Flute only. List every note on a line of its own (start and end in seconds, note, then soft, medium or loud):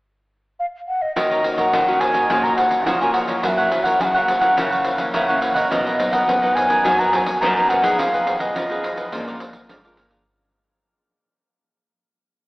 0.60 0.66 F5 medium
0.88 1.03 F#5 medium
1.02 1.15 D#5 medium
1.16 1.56 D#5 medium
1.57 2.02 F#5 medium
2.00 2.45 G#5 loud
2.44 2.56 A#5 loud
2.57 2.84 F#5 medium
2.86 2.92 F#5 medium
3.00 3.13 G#5 medium
3.13 3.20 F#5 medium
3.43 3.48 F#5 medium
3.47 3.86 E5 medium
3.84 4.02 F#5 medium
4.01 4.19 F#5 medium
4.01 4.05 G#5 medium
4.18 4.22 F5 medium
4.18 4.71 F#5 medium
5.14 5.44 E5 medium
5.42 5.57 F#5 medium
5.55 5.70 D#5 medium
5.71 6.14 D#5 medium
6.12 6.57 F#5 medium
6.55 7.01 G#5 loud
6.99 7.12 A#5 loud
7.12 7.17 A#5 medium
7.16 7.42 G#5 medium
7.41 7.56 A#5 medium
7.56 7.71 A#5 medium
7.69 8.00 F#5 medium
7.98 8.42 F5 medium
8.40 9.26 D#5 medium